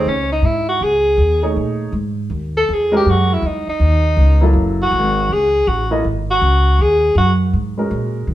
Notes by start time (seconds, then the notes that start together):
Already playing: C4
0.06 C#2 C#4
0.32 D#4
0.42 G#2 E4
0.69 F#4
0.81 C#2 G#4
1.17 D#2
1.43 A3 D#4 G#4 C#5
1.56 A#2
1.92 G#2
2.30 D#2
2.57 A4
2.69 E2
2.73 G#4
2.92 G#3 C#4 F#4 A#4
2.97 G4
3.06 F#2
3.10 F#4
3.34 E4
3.42 E2 D#4
3.67 D#4, muted upright bass stroke
3.80 D#2
4.17 C#2
4.41 F#3 A#3 E4 A4
4.53 F#1
4.82 F#4
4.91 G#1
5.29 C#2 G#4
5.67 A1 F#4
5.91 A#3 E4 A4 D#5
6.04 G#1
6.31 F#4
6.41 C#2
6.79 D#2 G#4
7.15 F#2 F#4
7.53 G#2
7.78 G#3 C#4 F#4 A#4
7.91 A#2
8.27 D#3